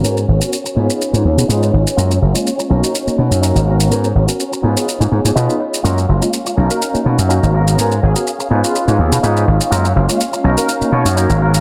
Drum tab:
SH |xx-xxx-xxx-xxx-x|xx-xxx-xxx-xxx-x|xx-xxx-xxx-xxx-x|xx-xxx-xxx-xxx-x|

SH |xx-xxx-xxx-xxx-x|xx-xxx-xxx-xxx-x|